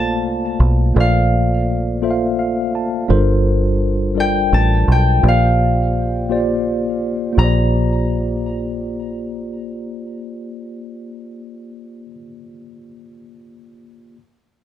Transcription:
Already playing: A#1 A3 A#3 F4 A4 C5 D5 F5 A5
0.25 C2
0.60 B1
0.94 A#1 A#3 F4 A4 C5 D5
1.00 F5
2.02 A#3 F4 A4 C5 E5
2.11 F5
2.39 F5
2.75 A5
3.08 G1 G3 D4 F4 A4 A#4 C5
4.15 G3 D4 F4 A4 A#4 D5
4.20 G5
4.53 A1 A5
4.88 B1 G5
5.22 A#1 A#3 F4 G4 C5 D5
5.28 F5
6.29 A#3 F4 G4 C5 D5
7.32 A#3 F4
7.38 A#1 G4 C5 A#5
7.44 D5

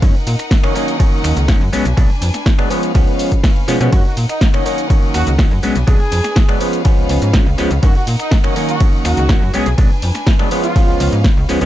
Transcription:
0.02 F#2 D#3 F#3 A#3 C#4 D#4 A#4 F#5, kick, closed hi-hat, ride, cabasa
0.15 closed hi-hat
0.27 A#2, open hi-hat, cabasa
0.39 finger snap, closed hi-hat, cabasa
0.51 kick, snare, closed hi-hat, ride, cabasa
0.63 D#3 F#3 A#3 C#4, finger snap, closed hi-hat
0.75 D#3 F#3 A#3 C#4, open hi-hat, cabasa
0.88 closed hi-hat, cabasa
0.99 D#3 F#3 A#3 C#4, kick, closed hi-hat, ride, cabasa
1.12 closed hi-hat
1.24 D#2, finger snap, open hi-hat, cabasa
1.37 C#2, closed hi-hat, cabasa
1.48 D#3 F#3 A#3 C#4, kick, snare, closed hi-hat, ride, cabasa
1.61 F#2, closed hi-hat
1.73 B1 F#3 G#3 B3 C#4 D4 B4 G#5, open hi-hat, cabasa
1.85 B1, closed hi-hat, cabasa
1.97 B1 F#3 G#3 B3 D4, kick, closed hi-hat, ride, cabasa
2.10 closed hi-hat
2.22 F2, open hi-hat, cabasa
2.34 finger snap, snare, closed hi-hat, cabasa
2.46 kick, snare, closed hi-hat, ride, cabasa
2.58 F#3 G#3 B3 D4, finger snap, closed hi-hat
2.70 F3 G#3 B3 C#4 F5, open hi-hat, cabasa
2.83 closed hi-hat, cabasa
2.94 C#2 F3 G#3 B3 C#4, kick, closed hi-hat, ride, cabasa
3.07 closed hi-hat
3.19 open hi-hat, cabasa
3.32 kick, closed hi-hat, cabasa
3.44 kick, snare, closed hi-hat, ride, cabasa
3.56 closed hi-hat
3.68 B2 F3 G#3 B3 C#4, open hi-hat, cabasa
3.80 B2 F3 G#3 B3 C#4, closed hi-hat, cabasa
3.92 F#2 D#3 F#3 A#3 C#4 D#4 F#4 A#4 F#5, kick, closed hi-hat, ride, cabasa
4.05 F#4, closed hi-hat
4.17 A#2, open hi-hat, cabasa
4.29 D#4, finger snap, closed hi-hat, cabasa
4.41 kick, snare, closed hi-hat, ride, cabasa
4.53 D#3 F#3 A#3 C#4, finger snap, closed hi-hat
4.65 D#3 F#3 A#3 C#4, open hi-hat, cabasa
4.78 closed hi-hat, cabasa
4.90 D#3 F#3 A#3 C#4, kick, closed hi-hat, ride, cabasa
5.03 closed hi-hat
5.14 D#2 F#4, finger snap, open hi-hat, cabasa
5.27 C#2, closed hi-hat, cabasa
5.38 D#3 F#3 A#3 C#4, kick, snare, closed hi-hat, ride, cabasa
5.51 F#2, closed hi-hat
5.63 B1 F#3 G#3 B3 C#4 D4 B4 G#5, open hi-hat, cabasa
5.76 B1, closed hi-hat, cabasa
5.87 B1 F#3 G#3 B3 D4 G#4, kick, closed hi-hat, ride, cabasa
6.00 closed hi-hat
6.12 F2, open hi-hat, cabasa
6.24 finger snap, snare, closed hi-hat, cabasa
6.36 kick, snare, closed hi-hat, ride, cabasa
6.48 F#3 G#3 B3 D4, finger snap, closed hi-hat
6.60 F3 G#3 B3 C#4 F5, open hi-hat, cabasa
6.73 closed hi-hat, cabasa
6.85 F3 G#3 B3 C#4, kick, closed hi-hat, ride, cabasa
6.97 C#2, closed hi-hat
7.09 C#2, open hi-hat, cabasa
7.22 G#2, closed hi-hat, cabasa
7.33 F3 G#3 B3 C#4, kick, snare, closed hi-hat, ride, cabasa
7.46 C#2, closed hi-hat
7.58 C#2 F3 G#3 B3 C#4, open hi-hat, cabasa
7.71 C#2, closed hi-hat, cabasa
7.82 F#2 D#3 F#3 A#3 C#4 D#4 F#4 A#4 F#5, kick, closed hi-hat, ride, cabasa
7.95 F#4, closed hi-hat
8.07 A#2, open hi-hat, cabasa
8.20 D#4, finger snap, closed hi-hat, cabasa
8.31 kick, snare, closed hi-hat, ride, cabasa
8.43 D#3 F#3 A#3 C#4, finger snap, closed hi-hat
8.56 D#3 F#3 A#3 C#4, open hi-hat, cabasa
8.69 F#4, closed hi-hat, cabasa
8.80 D#3 F#3 A#3 C#4, kick, closed hi-hat, ride, cabasa
8.93 closed hi-hat
9.05 D#2 F#4, finger snap, open hi-hat, cabasa
9.17 C#2, closed hi-hat, cabasa
9.29 D#3 F#3 A#3 C#4, kick, snare, closed hi-hat, ride, cabasa
9.42 F#2, closed hi-hat
9.53 B1 F#3 G#3 B3 C#4 D4 G#4 B4 G#5, open hi-hat, cabasa
9.66 B1, closed hi-hat, cabasa
9.78 B1 F#3 G#3 B3 D4, kick, closed hi-hat, ride, cabasa
9.90 closed hi-hat
10.02 F2, open hi-hat, cabasa
10.15 finger snap, snare, closed hi-hat, cabasa
10.27 kick, snare, closed hi-hat, ride, cabasa
10.39 F#3 G#3 B3 D4, finger snap, closed hi-hat
10.51 F3 G#3 B3 C#4 F5, open hi-hat, cabasa
10.64 F4, closed hi-hat, cabasa
10.76 F3 G#3 B3 C#4, kick, closed hi-hat, ride, cabasa
10.88 C#2, closed hi-hat
11.00 C#2, open hi-hat, cabasa
11.13 G#2, closed hi-hat, cabasa
11.24 kick, snare, closed hi-hat, ride, cabasa
11.37 C#2, closed hi-hat
11.49 C#2 F3 G#3 B3 C#4, open hi-hat, cabasa
11.61 C#2 F3 G#3 B3 C#4, closed hi-hat, cabasa

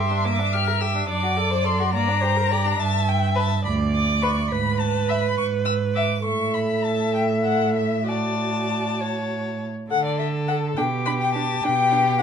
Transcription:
Already playing: G2 G4 E5 C6
0.11 D4
0.24 A#3 D6
0.39 D4
0.53 G4 F6
0.67 A#4
0.81 G4 E6
0.95 D4
1.08 F#2 D4 D5 D6
1.22 F#4
1.37 A4
1.51 C5
1.64 A4 C6
1.79 F#4
1.93 G2 A#3 D5 A#5
2.08 D4
2.22 G4 C5
2.36 A#4
2.51 G4 D5
2.65 D4
2.79 G2 E5 A5
3.08 G5
3.35 B4 A5
3.65 D2 D5 B5
3.93 D6
4.22 B4 C#6
4.51 G#2 B4 B5
4.80 A5
5.08 E5 B5
5.37 G#2 C#6
5.65 E6
5.95 E5 D6
6.25 A2 A4 E5 C#6
6.54 B5
6.84 A5
7.14 G5
7.44 F#5
7.77 E5
8.08 F#4 D5 A5
9.00 C#5
9.90 D3 A4 F#5
10.05 D5
10.19 A4 E5
10.48 A4 F#5
10.77 B2 D4 G4 G5
11.06 D4 B5
11.21 G5
11.34 D4 A5
11.64 B2 D4 G5
11.91 D4
12.19 F#5

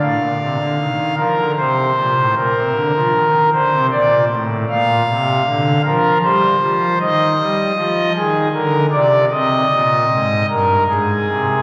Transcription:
0.00 A2 F5
0.20 A#2
0.40 C3
0.60 D3
0.79 D#3
1.18 F3 A#4
1.38 D3
1.57 C3 C5
1.96 A#2
2.17 A2
2.36 A#2 A#4
2.55 C3
2.75 D3
2.94 F3
3.13 D#3
3.52 D3 C5
3.72 C3
3.91 A#2 D5
4.31 A2
4.69 A#2 F5
5.09 C3
5.47 D3
5.85 F3 A#4
6.23 G3 C5
6.61 F3
7.00 D#3 D#5
7.40 G3
7.77 F3
8.16 D#3 G#4
8.53 D3 A#4
8.92 C3 D5
9.32 C3 D#5
9.71 A#2
10.10 G#2
10.50 G2 A#4
10.89 G#2 G#4
11.30 C3

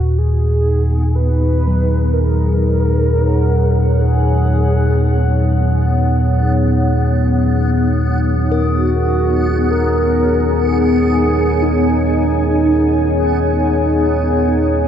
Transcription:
Already playing: D#2 A#2 F#4
0.16 D#4 G#4
0.20 B3
1.15 B4
1.61 G#4
1.67 F#3
2.13 A#4
2.36 C#5
2.61 F#5
4.02 G#4
8.52 A#4
8.75 F#4
9.00 G#5
9.71 A#4
10.66 G#4
11.62 D#4

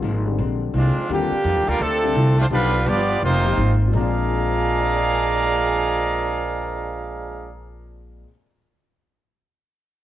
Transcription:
0.02 G#1 A#2 F3 G#3 D4
0.26 D3 G3 C4 D4
0.38 A#1 A#2 G#3 C4 D4
0.74 C2 G#2 A#2 D3 F3 G#3 C4 D4 F4
1.09 D#2 A#2 D3 D#3 G3 A#3 C4 D4 F4 G4
1.13 F4
1.31 muted upright bass stroke
1.44 F2 D#3 G3 D4 F4
1.56 D#2
1.67 D2 D3 G3 A#3 D4 F4 A#4
1.80 D2 C3 D3 F3 A3 C4 D4 A4
1.85 F4
2.03 D3 G3 C4 D4
2.15 C2 D3 A3 C4 F4
2.37 F3 A3 C4 D4 F4 C5
2.50 B1 G2 D3 F3 G3 B3 D4 F4 B4
2.54 D4
2.86 G1 G2 F3 B3 D4 F4 G4 D5
3.21 F1 F2 C3 D#3 A#3 C4 D#4 F4 C5
3.25 C4
3.45 F3 A#3 D#4 G4
3.57 G#1 F2 D#3 A#3 C4
3.88 A#2 F3
3.92 A#1 A#2 F3 G#3 D4 G#4 D5 F5 A#5
3.97 G#3 C4 D4
4.30 F4
4.38 G#4
4.45 C5
4.55 F5
4.65 G#5
4.99 G#6

